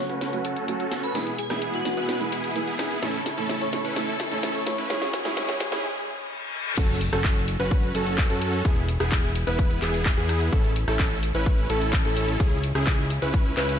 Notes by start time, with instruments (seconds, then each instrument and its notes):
Already playing: string section C#3 A3 F#4 A4, felt piano A3, riser
0.00 felt piano C#4 F#4
0.10 supersaw synth C#4 F#4 B4, closed hi-hat
0.21 snare, closed hi-hat
0.32 felt piano F#3 A3 C#4 F#4, closed hi-hat
0.45 supersaw synth C#4 F#4 A4, open hi-hat
0.56 closed hi-hat
0.68 felt piano F#3 A3 C#4 F#4, closed hi-hat
0.80 supersaw synth C#4 F#4 A4, closed hi-hat
0.92 snare, open hi-hat
1.03 digital synth lead B4, closed hi-hat
1.14 string section B2 G#3 E4 G#4, felt piano E3 G#3 B3 E4, supersaw synth B3 E4 G#4, snare, closed hi-hat
1.27 closed hi-hat
1.38 digital synth lead G#4, open hi-hat
1.50 felt piano E3 G#3 B3 E4, supersaw synth B3 E4 G#4, digital synth lead G#4, cross-stick, snare, closed hi-hat
1.62 closed hi-hat
1.74 digital synth lead F#4, closed hi-hat
1.85 felt piano E3 G#3 B3 E4, snare, open hi-hat
1.97 supersaw synth B3 E4 B4, closed hi-hat
2.09 snare, closed hi-hat
2.20 felt piano E3 G#3 B3 E4, closed hi-hat
2.32 supersaw synth B3 E4 G#4, open hi-hat
2.44 open hi-hat
2.55 felt piano E3 G#3 B3 E4, closed hi-hat
2.67 supersaw synth B3 E4 G#4, closed hi-hat
2.79 cross-stick, snare, open hi-hat
2.91 closed hi-hat
3.02 felt piano A2 E3 A3 C#4 E4, string section C#3 A3 A4, supersaw synth C#4 E4 A4, snare, closed hi-hat
3.14 closed hi-hat
3.26 snare, open hi-hat
3.37 felt piano A2 E3 A3 C#4 E4, supersaw synth C#4 E4 A4, closed hi-hat
3.49 snare, closed hi-hat
3.61 digital synth lead C#5, closed hi-hat
3.72 felt piano A2 E3 A3 C#4 E4, digital synth lead C#5, snare, open hi-hat
3.85 supersaw synth C#4 E4 B4, closed hi-hat
3.96 felt piano A2 E3 A3 C#4 E4, supersaw synth C#4 E4 A4, snare, closed hi-hat
4.08 closed hi-hat
4.20 snare, open hi-hat
4.31 felt piano A2 E3 A3 C#4 E4, supersaw synth C#4 E4 A4, closed hi-hat
4.43 snare, closed hi-hat
4.55 digital synth lead C#5, closed hi-hat
4.66 felt piano A2 E3 A3 C#4 E4, digital synth lead C#5, snare, open hi-hat
4.78 supersaw synth C#4 E4 B4, closed hi-hat
4.89 felt piano G#2 E3 G#3 C#4 E4, string section G#3 G#4, supersaw synth C#4 E4 G#4, digital synth lead C#5, snare, closed hi-hat
5.02 digital synth lead C#5, snare, closed hi-hat
5.13 snare, open hi-hat
5.25 felt piano G#2 E3 G#3 C#4 E4, supersaw synth C#4 E4 G#4, snare, closed hi-hat
5.36 felt piano G#2 E3 G#3 C#4 E4, supersaw synth C#4 E4 G#4, digital synth lead C#5, snare, closed hi-hat
5.49 digital synth lead C#5, snare, closed hi-hat
5.60 snare, open hi-hat
5.71 felt piano G#2 E3 G#3 C#4 E4, supersaw synth C#4 E4 G#4, snare, closed hi-hat
5.84 reverse cymbal
6.78 analog synth bass F#1, supersaw synth C#4 F#4 A4, grand piano A4, kick, closed hi-hat, crash, impact
6.89 closed hi-hat
7.01 open hi-hat
7.13 analog synth bass F#1, supersaw synth C#4 F#4 A4, grand piano A4, cross-stick, closed hi-hat
7.24 kick, clap, closed hi-hat
7.36 closed hi-hat
7.48 open hi-hat
7.60 analog synth bass F#1, supersaw synth C#4 F#4 B4, grand piano B4, closed hi-hat
7.71 kick, closed hi-hat
7.83 closed hi-hat
7.95 analog synth bass F#1, supersaw synth C#4 F#4 A4, grand piano A4, open hi-hat
8.07 closed hi-hat
8.18 kick, clap, closed hi-hat
8.30 analog synth bass F#2, supersaw synth C#4 F#4 A4, grand piano A4, closed hi-hat
8.42 open hi-hat
8.53 closed hi-hat
8.65 analog synth bass E1, supersaw synth B3 E4 G#4, grand piano G#4, kick, closed hi-hat
8.77 closed hi-hat
8.89 open hi-hat
9.00 analog synth bass E1, supersaw synth B3 E4 G#4, grand piano G#4, cross-stick, closed hi-hat
9.12 kick, clap, closed hi-hat
9.24 closed hi-hat
9.35 open hi-hat
9.47 analog synth bass E1, supersaw synth B3 E4 B4, grand piano B4, closed hi-hat
9.59 kick, closed hi-hat
9.71 closed hi-hat
9.82 analog synth bass E1, supersaw synth B3 E4 G#4, grand piano G#4, clap, open hi-hat
9.94 open hi-hat
10.06 kick, clap, closed hi-hat
10.17 analog synth bass E2, supersaw synth B3 E4 G#4, grand piano G#4, closed hi-hat
10.29 cross-stick, open hi-hat
10.41 closed hi-hat
10.53 analog synth bass A1, supersaw synth C#4 E4 A4, grand piano A4, kick, closed hi-hat
10.64 closed hi-hat
10.76 open hi-hat
10.88 analog synth bass A1, supersaw synth C#4 E4 A4, grand piano A4, cross-stick, closed hi-hat
10.99 kick, clap, closed hi-hat
11.11 closed hi-hat
11.23 open hi-hat
11.35 analog synth bass A1, supersaw synth C#4 E4 B4, grand piano B4, closed hi-hat
11.46 kick, closed hi-hat
11.58 closed hi-hat
11.70 analog synth bass A1, supersaw synth C#4 E4 A4, grand piano A4, open hi-hat
11.81 closed hi-hat
11.93 kick, clap, closed hi-hat
12.05 analog synth bass A1, supersaw synth C#4 E4 A4, grand piano A4, closed hi-hat
12.17 open hi-hat
12.28 closed hi-hat
12.40 analog synth bass C#2, supersaw synth C#4 E4 G#4, grand piano G#4, kick, closed hi-hat
12.52 closed hi-hat
12.64 open hi-hat
12.75 analog synth bass C#2, supersaw synth C#4 E4 G#4, grand piano G#4, cross-stick, closed hi-hat
12.87 kick, clap, closed hi-hat
12.99 closed hi-hat
13.10 open hi-hat
13.22 analog synth bass C#2, supersaw synth C#4 E4 B4, grand piano B4, closed hi-hat
13.34 kick, closed hi-hat
13.46 closed hi-hat
13.57 analog synth bass C#2, supersaw synth C#4 E4 B4, grand piano B4, clap, open hi-hat
13.69 open hi-hat